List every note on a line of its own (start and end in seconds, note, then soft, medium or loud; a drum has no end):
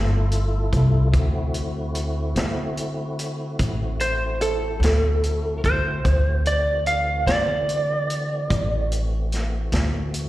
0.00 0.68 G1 medium
0.00 1.08 A3 medium
0.00 1.09 E4 medium
0.00 1.08 F4 medium
0.00 1.08 A4 medium
0.32 closed hi-hat medium
0.72 1.10 C2 medium
0.72 kick medium
0.72 closed hi-hat soft
1.12 2.32 D2 medium
1.12 6.00 A3 medium
1.12 6.00 C4 medium
1.12 6.00 E4 medium
1.12 6.00 F#4 medium
1.12 kick medium
1.12 closed hi-hat medium
1.54 closed hi-hat medium
1.95 closed hi-hat soft
2.35 3.55 D3 medium
2.35 snare loud
2.35 closed hi-hat medium
2.77 closed hi-hat medium
3.19 closed hi-hat medium
3.59 4.78 A1 medium
3.59 kick medium
3.59 closed hi-hat medium
4.00 4.40 C5 medium
4.00 closed hi-hat medium
4.41 5.60 A4 medium
4.41 closed hi-hat medium
4.80 5.59 D2 medium
4.80 closed hi-hat medium
4.84 snare medium
5.23 closed hi-hat medium
5.64 6.01 D2 medium
5.64 6.44 C5 medium
5.64 kick medium
5.64 closed hi-hat soft
6.04 7.23 D2 medium
6.04 10.29 E3 medium
6.04 10.29 A3 medium
6.04 10.29 C4 medium
6.04 10.29 F#4 medium
6.04 kick medium
6.04 closed hi-hat medium
6.46 6.86 D5 medium
6.46 closed hi-hat medium
6.86 7.26 F5 medium
6.86 closed hi-hat medium
7.26 8.45 D3 medium
7.26 8.87 D5 medium
7.26 snare loud
7.26 closed hi-hat medium
7.69 closed hi-hat medium
8.10 closed hi-hat medium
8.50 9.69 A1 medium
8.50 kick medium
8.50 closed hi-hat medium
8.92 closed hi-hat medium
9.32 snare soft
9.32 closed hi-hat medium
9.72 10.29 D2 medium
9.72 snare medium
9.72 closed hi-hat medium
10.14 closed hi-hat medium